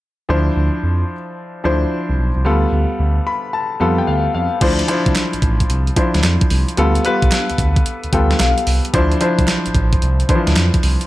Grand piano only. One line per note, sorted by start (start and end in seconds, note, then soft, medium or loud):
0.29 1.12 F3 medium
0.29 1.12 D4 medium
0.29 1.12 E4 medium
0.29 1.12 C5 medium
1.64 2.28 F3 medium
1.64 2.29 D4 medium
1.64 2.29 E4 medium
1.64 2.29 C5 medium
2.45 3.28 G3 medium
2.45 3.28 B3 medium
2.45 3.28 F4 medium
2.45 3.29 A4 medium
3.27 3.52 B5 medium
3.53 3.95 A5 medium
3.80 4.44 G3 medium
3.80 4.45 B3 medium
3.80 4.45 F4 medium
3.80 4.45 A4 medium
3.98 4.07 G5 medium
4.07 4.32 F5 medium
4.34 4.59 F5 medium
4.61 4.84 F3 medium
4.61 4.84 D4 medium
4.61 4.84 E4 medium
4.61 4.85 C5 medium
4.88 5.71 F3 medium
4.88 5.71 D4 medium
4.88 5.72 E4 medium
4.88 5.72 C5 medium
5.96 6.61 F3 medium
5.96 6.61 D4 medium
5.96 6.61 E4 medium
5.96 6.61 C5 medium
6.77 7.00 G3 medium
6.77 7.00 B3 medium
6.77 7.00 F4 medium
6.77 7.01 A4 medium
7.04 7.87 G3 medium
7.04 7.88 B3 medium
7.04 7.88 F4 medium
7.04 7.88 B4 medium
8.12 8.77 G3 medium
8.12 8.77 B3 medium
8.12 8.77 F4 medium
8.12 8.78 A4 medium
8.12 8.38 G5 medium
8.40 8.90 F5 medium
8.93 9.16 F3 medium
8.93 9.17 D4 medium
8.93 9.17 E4 medium
8.93 9.17 C5 medium
9.20 10.04 F3 medium
9.20 10.04 D4 medium
9.20 10.04 E4 medium
9.20 10.04 C5 medium
10.29 10.37 E3 medium
10.29 10.93 D4 medium
10.29 10.94 E4 medium
10.29 10.94 C5 medium
10.35 10.96 F3 medium